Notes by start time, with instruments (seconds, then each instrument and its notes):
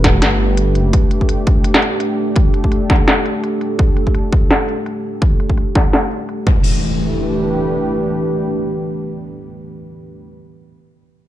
Already playing: detuned saw bass E1, analog synth pad A3 D4 G4 B4
0.04 kick, snare, closed hi-hat
0.22 detuned saw bass G1, snare, closed hi-hat
0.57 closed hi-hat
0.75 detuned saw bass F#1, closed hi-hat
0.93 kick, closed hi-hat
1.11 closed hi-hat
1.21 kick
1.29 closed hi-hat
1.47 kick, closed hi-hat
1.64 closed hi-hat
1.74 snare
1.82 closed hi-hat
2.00 closed hi-hat
2.15 analog synth pad A4
2.36 kick, closed hi-hat
2.54 closed hi-hat
2.64 kick
2.72 closed hi-hat
2.90 kick, snare, closed hi-hat
2.93 closed hi-hat
2.96 closed hi-hat
3.08 snare, closed hi-hat
3.26 closed hi-hat
3.44 closed hi-hat
3.61 closed hi-hat
3.79 kick, closed hi-hat
3.97 closed hi-hat
4.07 kick
4.15 closed hi-hat
4.33 kick, closed hi-hat
4.51 snare, closed hi-hat
4.69 closed hi-hat
4.86 closed hi-hat
5.22 kick, closed hi-hat
5.40 closed hi-hat
5.50 kick
5.58 closed hi-hat
5.75 kick, snare, closed hi-hat
5.93 snare, closed hi-hat
6.11 closed hi-hat
6.29 closed hi-hat
6.47 analog synth pad E3, kick, crash, impact
6.53 analog synth pad A3
6.76 analog synth pad D4
6.81 analog synth pad G4
6.87 analog synth pad B4